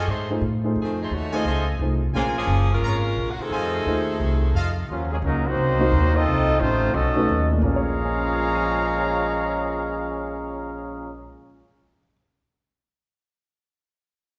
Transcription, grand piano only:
0.30 0.41 A3 medium
0.30 0.41 D#4 soft
0.30 0.42 F4 medium
0.30 0.42 G#4 medium
0.30 0.42 C5 medium
0.64 1.08 A3 medium
0.64 1.09 D#4 medium
0.64 1.09 F4 medium
0.64 1.09 G#4 medium
0.64 1.09 C5 medium
1.33 1.44 A3 medium
1.33 1.44 D#4 medium
1.33 1.44 F4 medium
1.33 1.45 G#4 medium
1.33 1.45 C5 medium
1.80 1.99 A3 soft
1.80 2.00 D#4 soft
1.80 2.00 F4 soft
1.80 2.00 G#4 soft
1.80 2.00 C5 medium
2.15 3.10 A#3 medium
2.15 3.10 C#4 soft
2.15 3.10 F4 medium
2.15 3.10 G#4 medium
2.15 3.10 C5 medium
3.86 4.37 A3 medium
3.86 4.37 D#4 medium
3.86 4.38 F4 medium
3.86 4.38 C5 medium
5.79 6.23 A#3 medium
5.79 6.24 C4 medium
5.79 6.24 D#4 medium
5.79 6.24 F#4 medium
5.79 6.25 C5 medium
7.15 7.60 A3 medium
7.15 7.60 C#4 medium
7.15 7.61 D#4 medium
7.15 7.61 F#4 medium
7.15 7.61 B4 medium
7.51 11.20 A#2 medium
7.58 11.26 A#3 medium
7.64 11.33 C#4 medium
7.70 11.38 G#4 medium
7.76 11.45 C#5 medium
7.99 11.63 D#5 soft
8.05 11.70 G#5 soft
8.14 11.78 C6 soft
8.23 11.88 D#6 soft
8.33 11.97 G#6 soft
8.44 12.06 C7 soft
8.55 12.12 D#7 soft

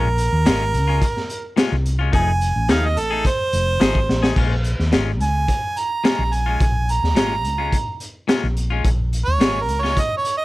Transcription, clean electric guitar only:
0.46 0.63 A#2 medium
0.46 0.63 G#3 medium
0.46 0.63 C#4 medium
0.46 0.64 F4 medium
0.88 1.05 G#3 soft
0.88 1.05 C#4 medium
0.88 1.04 F4 medium
1.57 1.74 A#2 medium
1.57 1.75 G#3 medium
1.57 1.75 C#4 medium
1.57 1.75 F4 loud
1.99 2.12 G#3 soft
1.99 2.13 C#4 soft
1.99 2.13 F4 medium
2.12 2.30 F3 medium
2.12 2.30 A3 medium
2.12 2.31 D#4 medium
2.12 2.31 G#4 medium
2.69 2.86 F3 medium
2.69 2.87 A3 medium
2.69 2.87 D#4 medium
2.69 2.87 G#4 medium
3.11 3.29 A3 soft
3.11 3.28 D#4 soft
3.11 3.28 G#4 medium
3.80 3.98 F3 medium
3.80 3.98 A3 medium
3.80 3.99 D#4 medium
3.80 3.99 G#4 medium
4.23 4.36 A3 soft
4.23 4.37 D#4 medium
4.23 4.37 G#4 medium
4.36 4.54 A#2 medium
4.36 4.54 G#3 medium
4.36 4.54 C#4 medium
4.36 4.55 F4 medium
4.92 5.10 A#2 medium
4.92 5.10 G#3 medium
4.92 5.10 C#4 medium
4.92 5.11 F4 medium
6.04 6.22 A#2 medium
6.04 6.22 G#3 medium
6.04 6.22 C#4 medium
6.04 6.23 F4 medium
6.46 6.65 G#3 soft
6.46 6.64 C#4 soft
6.46 6.63 F4 soft
7.15 7.33 A#2 medium
7.15 7.34 G#3 medium
7.15 7.34 C#4 medium
7.15 7.34 F4 medium
7.58 7.77 G#3 soft
7.58 7.76 C#4 soft
7.58 7.75 F4 soft
8.28 8.46 A#2 medium
8.28 8.46 G#3 medium
8.28 8.46 C#4 medium
8.28 8.46 F4 loud
8.70 8.89 G#3 medium
8.70 8.88 C#4 medium
8.70 8.87 F4 medium
9.40 9.58 A#2 medium
9.40 9.58 G#3 medium
9.40 9.58 C#4 medium
9.40 9.59 F4 medium
9.83 10.01 G#3 soft
9.83 10.00 C#4 soft
9.83 10.00 F4 medium

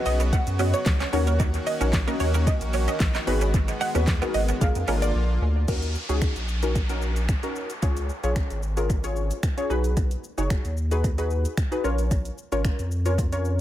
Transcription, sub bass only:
0.06 0.34 B1 loud
0.47 0.74 F#2 loud
0.86 1.04 C#2 loud
1.13 1.59 D#2 loud
1.81 2.08 A#1 loud
2.20 2.48 D#2 medium
2.61 2.88 A#1 loud
3.00 3.19 A#1 loud
3.27 3.73 G#1 loud
3.95 4.22 D#2 medium
4.34 4.53 G#1 loud
4.61 4.71 A#1 loud
4.75 4.84 F2 loud
4.88 5.12 G#1 medium
5.15 5.39 A#1 medium
5.42 5.66 D2 medium
5.68 5.96 D#2 loud
6.09 6.27 C#2 loud
6.36 7.35 A#1 medium
7.83 8.10 C#2 loud
8.24 8.42 A#1 loud
8.50 9.32 G#1 medium
9.70 10.16 B1 loud
10.38 10.56 F#1 loud
10.65 11.46 D#2 loud
11.84 12.30 A#1 loud
12.52 12.70 G#1 loud
12.79 13.61 F2 medium

